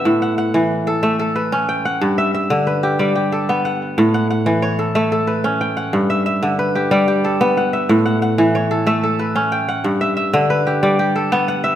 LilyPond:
<<
  \new Staff \with { instrumentName = "Kora" } { \time 12/8 \key g \lydian \tempo 4. = 123 <e'' fis''>8 fis''8 fis''4. a'8 e''8 a'8 b'4 g''8 fis''8~ | fis''8 e''8 e''4 b'8 g'8 d''8 g'8 a'4 fis''4~ | fis''8 fis''8 fis''4 cis''8 a'8 e''8 a'8 b'4 g''8 fis''8~ | fis''8 e''8 e''4 b'8 g'8 d''8 g'8 a'4 fis''8 e''8~ |
e''8 fis''8 fis''4 cis''8 a'8 e''8 a'8 b'4 g''8 fis''8~ | fis''8 e''8 e''4 b'8 g'8 d''8 g'8 a'4 fis''8 e''8 | }
  \new Staff \with { instrumentName = "Kora" } { \clef bass \time 12/8 \key g \lydian a,4 r8 e4 r8 a4 r8 cis'4 r8 | g,4 r8 d4 r8 g4 r8 b4 r8 | a,4 r8 e4 r8 a4 r8 cis'4 r8 | g,4 r8 d4 r8 g4 r8 b4 r8 |
a,4 r8 e4 r8 a4 r8 cis'4 r8 | g,4 r8 d4 r8 g4 r8 b4 r8 | }
>>